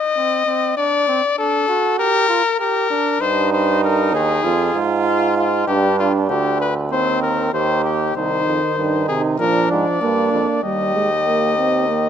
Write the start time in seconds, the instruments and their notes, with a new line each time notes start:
Already playing: trumpet D#5
0.16 trumpet C4
0.46 trumpet C4
0.77 trumpet D4 D5
1.08 trumpet C4
1.38 trumpet D4 A4
1.68 trumpet F#4
1.99 trumpet G4 A#4
2.29 trumpet F4
2.60 trumpet G4 A#4
2.90 trumpet D4
3.21 euphonium G2, trumpet D#4 C5
3.53 trumpet C5
3.84 trumpet A#4
4.13 euphonium D#2, trumpet G#4
4.44 euphonium F2, trumpet F4
4.75 euphonium G#2
5.06 trumpet F4
5.38 trumpet F4
5.67 euphonium G2, trumpet D4 G4
5.99 trumpet F4
6.29 euphonium D2, trumpet D4 G4
6.61 trumpet B4
6.91 euphonium D#2, trumpet C4 C5
7.23 trumpet A#4
7.53 euphonium D#2, trumpet G4 C5
7.85 trumpet G4
8.15 euphonium C2, trombone D#3, trumpet D#4 C5
8.46 euphonium F2
8.77 euphonium G2, trumpet D#4
9.08 euphonium C3, trumpet G#4
9.39 euphonium A#2, trombone F3, trumpet D4 A#4
9.71 euphonium G#2, trumpet D5
10.01 euphonium G2, trombone A#3, trumpet D4
10.33 euphonium F2
10.63 euphonium D#2, trombone G3, trumpet G4 D#5
10.95 trombone G#3
11.26 trombone A#3
11.57 trombone C4
11.89 trombone A#3